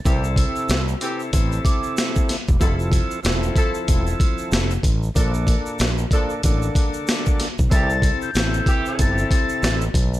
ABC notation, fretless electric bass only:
X:1
M:4/4
L:1/16
Q:"Swing 16ths" 1/4=94
K:Cmix
V:1 name="Fretless electric bass" clef=bass
C,,3 z C,,2 z2 A,,,2 z4 z E,,, | F,,,3 z E,,,2 z2 E,,,2 z2 F,,,2 A,,,2 | B,,,3 z B,,,2 z2 A,,,2 z4 z =B,,, | C,,3 z A,,,2 z2 G,,,2 z2 A,,,2 =B,,,2 |]